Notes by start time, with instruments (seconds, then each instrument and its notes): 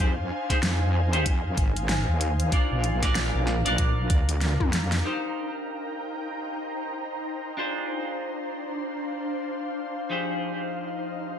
Already playing: ambient pad C5 F5 G#5
0.00 wobble bass F2, ambient pad D#4, clean electric guitar G#4 C5, kick, closed hi-hat
0.50 clean electric guitar D#4 G4 G#4 C5, kick, snare, closed hi-hat
0.63 wobble bass F2, snare, closed hi-hat
1.06 wobble bass E2
1.13 clean electric guitar D#4 G4 G#4 C5, closed hi-hat
1.26 wobble bass F2, kick, closed hi-hat
1.57 wobble bass G#1, kick, closed hi-hat
1.76 closed hi-hat
1.89 snare, closed hi-hat
2.08 wobble bass D#2
2.21 closed hi-hat
2.40 closed hi-hat
2.52 clean electric guitar D4 F4 A#4 D5, ambient pad D4, kick, closed hi-hat
2.64 ambient pad A#4
2.71 wobble bass A#1
2.84 closed hi-hat
3.03 clean electric guitar D4 F4 A#4 D5, kick, snare, closed hi-hat
3.15 snare, closed hi-hat
3.34 wobble bass A#1
3.47 snare
3.65 wobble bass A#1, clean electric guitar D4 F4 A#4 D5, ambient pad A#5, closed hi-hat
3.78 kick, closed hi-hat
4.10 wobble bass D2, kick, closed hi-hat
4.29 closed hi-hat
4.41 snare, closed hi-hat
4.60 wobble bass F2, kick, high tom
4.73 snare, closed hi-hat
4.92 snare, closed hi-hat
5.04 clean electric guitar D#4 G4 A#4 C5, ambient pad D#4
5.27 ambient pad G5
5.45 ambient pad C5
7.57 clean electric guitar D4 F4 G#4 C5, ambient pad D4
8.66 ambient pad F5
10.10 clean electric guitar F3 D#4 G4 G#4 C5, ambient pad D#4